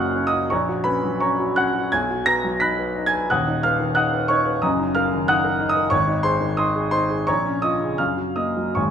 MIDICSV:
0, 0, Header, 1, 2, 480
1, 0, Start_track
1, 0, Tempo, 700117
1, 343, Time_signature, 2, 2, 24, 8
1, 2258, Tempo, 657174
1, 4658, Tempo, 708383
1, 5618, Tempo, 786370
1, 6173, End_track
2, 0, Start_track
2, 0, Title_t, "Grand piano"
2, 0, Program_c, 0, 0
2, 0, Control_c, 0, 64, 127
2, 0, Note_on_c, 0, 30, 71
2, 0, Note_on_c, 0, 42, 70
2, 0, Note_on_c, 0, 58, 61
2, 0, Note_on_c, 0, 61, 55
2, 0, Note_on_c, 0, 66, 58
2, 0, Note_on_c, 0, 70, 62
2, 0, Note_on_c, 0, 75, 75
2, 0, Note_on_c, 0, 77, 76
2, 0, Note_on_c, 0, 78, 75
2, 0, Note_on_c, 0, 85, 75
2, 0, Note_on_c, 0, 87, 110
2, 0, Note_on_c, 0, 89, 99
2, 0, Note_on_c, 0, 90, 99
2, 109, Note_off_c, 0, 61, 0
2, 109, Note_on_c, 0, 61, 61
2, 163, Note_off_c, 0, 78, 0
2, 163, Note_off_c, 0, 85, 0
2, 178, Note_off_c, 0, 66, 0
2, 181, Note_off_c, 0, 90, 0
2, 184, Note_off_c, 0, 87, 0
2, 184, Note_on_c, 0, 87, 99
2, 188, Note_off_c, 0, 75, 0
2, 188, Note_on_c, 0, 75, 73
2, 227, Note_on_c, 0, 66, 61
2, 297, Note_off_c, 0, 42, 0
2, 299, Note_off_c, 0, 61, 0
2, 314, Note_off_c, 0, 30, 0
2, 335, Note_off_c, 0, 75, 0
2, 344, Note_off_c, 0, 87, 0
2, 344, Note_on_c, 0, 85, 84
2, 345, Note_off_c, 0, 66, 0
2, 351, Note_on_c, 0, 82, 61
2, 352, Note_on_c, 0, 34, 73
2, 353, Control_c, 0, 64, 0
2, 354, Note_off_c, 0, 58, 0
2, 354, Note_on_c, 0, 73, 56
2, 356, Note_off_c, 0, 70, 0
2, 358, Note_off_c, 0, 89, 0
2, 359, Note_off_c, 0, 77, 0
2, 461, Control_c, 0, 64, 127
2, 472, Note_on_c, 0, 66, 60
2, 572, Note_off_c, 0, 82, 0
2, 574, Note_off_c, 0, 73, 0
2, 575, Note_on_c, 0, 83, 98
2, 581, Note_on_c, 0, 61, 63
2, 582, Note_on_c, 0, 71, 67
2, 585, Note_off_c, 0, 85, 0
2, 661, Note_off_c, 0, 66, 0
2, 709, Note_on_c, 0, 54, 59
2, 778, Note_off_c, 0, 61, 0
2, 810, Note_off_c, 0, 71, 0
2, 823, Note_off_c, 0, 83, 0
2, 826, Note_on_c, 0, 85, 80
2, 832, Note_on_c, 0, 82, 70
2, 834, Note_on_c, 0, 61, 59
2, 836, Note_on_c, 0, 73, 63
2, 904, Note_off_c, 0, 54, 0
2, 957, Note_on_c, 0, 66, 55
2, 1028, Note_off_c, 0, 61, 0
2, 1059, Note_off_c, 0, 82, 0
2, 1061, Note_off_c, 0, 73, 0
2, 1070, Note_on_c, 0, 90, 97
2, 1073, Note_off_c, 0, 85, 0
2, 1074, Note_on_c, 0, 61, 60
2, 1080, Note_on_c, 0, 78, 75
2, 1150, Note_off_c, 0, 66, 0
2, 1197, Note_on_c, 0, 66, 58
2, 1267, Note_off_c, 0, 61, 0
2, 1292, Note_off_c, 0, 34, 0
2, 1301, Note_off_c, 0, 78, 0
2, 1313, Note_off_c, 0, 90, 0
2, 1315, Note_off_c, 0, 66, 0
2, 1316, Note_on_c, 0, 92, 96
2, 1322, Note_on_c, 0, 35, 71
2, 1322, Note_on_c, 0, 80, 74
2, 1325, Control_c, 0, 64, 0
2, 1417, Control_c, 0, 64, 127
2, 1441, Note_on_c, 0, 66, 62
2, 1538, Note_off_c, 0, 80, 0
2, 1549, Note_on_c, 0, 94, 113
2, 1551, Note_off_c, 0, 92, 0
2, 1553, Note_on_c, 0, 71, 61
2, 1560, Note_on_c, 0, 82, 75
2, 1626, Note_off_c, 0, 66, 0
2, 1675, Note_on_c, 0, 54, 59
2, 1742, Note_off_c, 0, 71, 0
2, 1777, Note_off_c, 0, 82, 0
2, 1783, Note_on_c, 0, 95, 93
2, 1787, Note_off_c, 0, 94, 0
2, 1791, Note_on_c, 0, 63, 60
2, 1792, Note_on_c, 0, 83, 70
2, 1792, Note_on_c, 0, 90, 68
2, 1863, Note_off_c, 0, 54, 0
2, 1912, Note_on_c, 0, 71, 53
2, 1980, Note_off_c, 0, 63, 0
2, 2028, Note_on_c, 0, 63, 61
2, 2083, Note_off_c, 0, 83, 0
2, 2083, Note_off_c, 0, 90, 0
2, 2098, Note_off_c, 0, 71, 0
2, 2101, Note_off_c, 0, 95, 0
2, 2101, Note_on_c, 0, 92, 103
2, 2109, Note_on_c, 0, 80, 77
2, 2143, Note_on_c, 0, 71, 61
2, 2213, Note_off_c, 0, 63, 0
2, 2235, Note_off_c, 0, 35, 0
2, 2250, Note_off_c, 0, 80, 0
2, 2257, Note_off_c, 0, 92, 0
2, 2259, Note_off_c, 0, 71, 0
2, 2260, Note_on_c, 0, 27, 62
2, 2263, Note_on_c, 0, 90, 91
2, 2268, Control_c, 0, 64, 0
2, 2269, Note_on_c, 0, 87, 71
2, 2271, Note_on_c, 0, 78, 66
2, 2272, Note_on_c, 0, 39, 75
2, 2358, Control_c, 0, 64, 127
2, 2390, Note_on_c, 0, 63, 67
2, 2493, Note_off_c, 0, 87, 0
2, 2494, Note_off_c, 0, 78, 0
2, 2506, Note_off_c, 0, 90, 0
2, 2506, Note_on_c, 0, 89, 103
2, 2512, Note_on_c, 0, 77, 78
2, 2513, Note_on_c, 0, 71, 68
2, 2581, Note_off_c, 0, 63, 0
2, 2627, Note_on_c, 0, 51, 58
2, 2703, Note_off_c, 0, 71, 0
2, 2735, Note_off_c, 0, 77, 0
2, 2737, Note_on_c, 0, 90, 96
2, 2744, Note_on_c, 0, 63, 58
2, 2747, Note_on_c, 0, 87, 74
2, 2749, Note_off_c, 0, 89, 0
2, 2750, Note_on_c, 0, 78, 74
2, 2821, Note_off_c, 0, 51, 0
2, 2872, Note_on_c, 0, 71, 56
2, 2940, Note_off_c, 0, 63, 0
2, 2973, Note_off_c, 0, 87, 0
2, 2975, Note_off_c, 0, 78, 0
2, 2981, Note_on_c, 0, 85, 96
2, 2985, Note_off_c, 0, 90, 0
2, 2991, Note_on_c, 0, 63, 62
2, 2996, Note_on_c, 0, 73, 78
2, 3064, Note_off_c, 0, 71, 0
2, 3111, Note_on_c, 0, 71, 59
2, 3184, Note_off_c, 0, 63, 0
2, 3204, Note_off_c, 0, 27, 0
2, 3210, Note_off_c, 0, 39, 0
2, 3218, Note_off_c, 0, 73, 0
2, 3225, Note_on_c, 0, 87, 87
2, 3226, Note_on_c, 0, 30, 70
2, 3227, Note_off_c, 0, 85, 0
2, 3232, Note_off_c, 0, 71, 0
2, 3232, Note_on_c, 0, 82, 71
2, 3233, Note_on_c, 0, 75, 64
2, 3234, Note_on_c, 0, 42, 74
2, 3243, Control_c, 0, 64, 0
2, 3353, Note_on_c, 0, 63, 60
2, 3360, Control_c, 0, 64, 127
2, 3455, Note_off_c, 0, 82, 0
2, 3456, Note_off_c, 0, 75, 0
2, 3465, Note_on_c, 0, 89, 100
2, 3469, Note_off_c, 0, 87, 0
2, 3472, Note_on_c, 0, 70, 66
2, 3473, Note_on_c, 0, 77, 75
2, 3544, Note_off_c, 0, 63, 0
2, 3594, Note_on_c, 0, 51, 56
2, 3663, Note_off_c, 0, 70, 0
2, 3694, Note_off_c, 0, 77, 0
2, 3707, Note_off_c, 0, 89, 0
2, 3710, Note_on_c, 0, 90, 103
2, 3714, Note_on_c, 0, 78, 79
2, 3716, Note_on_c, 0, 63, 56
2, 3717, Note_on_c, 0, 87, 75
2, 3783, Note_off_c, 0, 51, 0
2, 3828, Note_on_c, 0, 70, 64
2, 3902, Note_off_c, 0, 63, 0
2, 3942, Note_on_c, 0, 63, 67
2, 4001, Note_off_c, 0, 87, 0
2, 4005, Note_off_c, 0, 78, 0
2, 4011, Note_on_c, 0, 87, 104
2, 4017, Note_off_c, 0, 70, 0
2, 4023, Note_on_c, 0, 75, 76
2, 4025, Note_off_c, 0, 90, 0
2, 4062, Note_on_c, 0, 70, 61
2, 4132, Note_off_c, 0, 63, 0
2, 4149, Note_off_c, 0, 30, 0
2, 4153, Note_off_c, 0, 42, 0
2, 4162, Note_on_c, 0, 85, 103
2, 4169, Note_off_c, 0, 75, 0
2, 4169, Note_on_c, 0, 32, 79
2, 4171, Note_on_c, 0, 73, 79
2, 4174, Note_off_c, 0, 87, 0
2, 4179, Note_off_c, 0, 70, 0
2, 4191, Control_c, 0, 64, 0
2, 4287, Note_on_c, 0, 63, 64
2, 4300, Control_c, 0, 64, 127
2, 4394, Note_off_c, 0, 73, 0
2, 4404, Note_on_c, 0, 84, 103
2, 4406, Note_off_c, 0, 85, 0
2, 4410, Note_on_c, 0, 68, 68
2, 4412, Note_on_c, 0, 72, 75
2, 4481, Note_off_c, 0, 63, 0
2, 4532, Note_on_c, 0, 51, 62
2, 4606, Note_off_c, 0, 68, 0
2, 4640, Note_off_c, 0, 72, 0
2, 4652, Note_on_c, 0, 87, 93
2, 4653, Note_off_c, 0, 84, 0
2, 4660, Note_on_c, 0, 63, 59
2, 4660, Note_on_c, 0, 75, 74
2, 4663, Note_on_c, 0, 84, 75
2, 4728, Note_off_c, 0, 51, 0
2, 4777, Note_on_c, 0, 68, 62
2, 4848, Note_off_c, 0, 63, 0
2, 4873, Note_off_c, 0, 84, 0
2, 4879, Note_off_c, 0, 75, 0
2, 4884, Note_on_c, 0, 84, 100
2, 4888, Note_on_c, 0, 72, 71
2, 4890, Note_on_c, 0, 63, 67
2, 4892, Note_off_c, 0, 87, 0
2, 4967, Note_off_c, 0, 68, 0
2, 5012, Note_on_c, 0, 68, 61
2, 5083, Note_off_c, 0, 63, 0
2, 5100, Note_off_c, 0, 32, 0
2, 5113, Note_off_c, 0, 72, 0
2, 5125, Note_on_c, 0, 85, 98
2, 5127, Note_off_c, 0, 84, 0
2, 5131, Note_on_c, 0, 82, 76
2, 5132, Note_off_c, 0, 68, 0
2, 5135, Note_on_c, 0, 34, 67
2, 5136, Note_on_c, 0, 73, 78
2, 5145, Control_c, 0, 64, 0
2, 5239, Control_c, 0, 64, 127
2, 5253, Note_on_c, 0, 61, 64
2, 5354, Note_off_c, 0, 82, 0
2, 5356, Note_off_c, 0, 73, 0
2, 5363, Note_on_c, 0, 87, 92
2, 5368, Note_off_c, 0, 85, 0
2, 5368, Note_on_c, 0, 75, 71
2, 5373, Note_on_c, 0, 65, 61
2, 5445, Note_off_c, 0, 61, 0
2, 5487, Note_on_c, 0, 49, 57
2, 5569, Note_off_c, 0, 65, 0
2, 5599, Note_off_c, 0, 75, 0
2, 5605, Note_off_c, 0, 34, 0
2, 5608, Note_on_c, 0, 89, 85
2, 5614, Note_off_c, 0, 87, 0
2, 5615, Note_off_c, 0, 49, 0
2, 5616, Note_on_c, 0, 42, 62
2, 5618, Note_on_c, 0, 77, 66
2, 5629, Control_c, 0, 64, 0
2, 5714, Control_c, 0, 64, 127
2, 5725, Note_on_c, 0, 66, 49
2, 5834, Note_off_c, 0, 77, 0
2, 5839, Note_on_c, 0, 87, 81
2, 5843, Note_on_c, 0, 58, 59
2, 5846, Note_on_c, 0, 75, 69
2, 5847, Note_off_c, 0, 89, 0
2, 5919, Note_off_c, 0, 66, 0
2, 5966, Note_on_c, 0, 54, 50
2, 6041, Note_off_c, 0, 58, 0
2, 6076, Note_off_c, 0, 75, 0
2, 6078, Note_on_c, 0, 85, 81
2, 6080, Note_off_c, 0, 42, 0
2, 6082, Note_on_c, 0, 32, 63
2, 6086, Note_on_c, 0, 44, 57
2, 6088, Note_on_c, 0, 73, 53
2, 6088, Note_on_c, 0, 80, 58
2, 6089, Note_off_c, 0, 87, 0
2, 6093, Note_off_c, 0, 54, 0
2, 6107, Control_c, 0, 64, 0
2, 6173, Note_off_c, 0, 32, 0
2, 6173, Note_off_c, 0, 44, 0
2, 6173, Note_off_c, 0, 73, 0
2, 6173, Note_off_c, 0, 80, 0
2, 6173, Note_off_c, 0, 85, 0
2, 6173, End_track
0, 0, End_of_file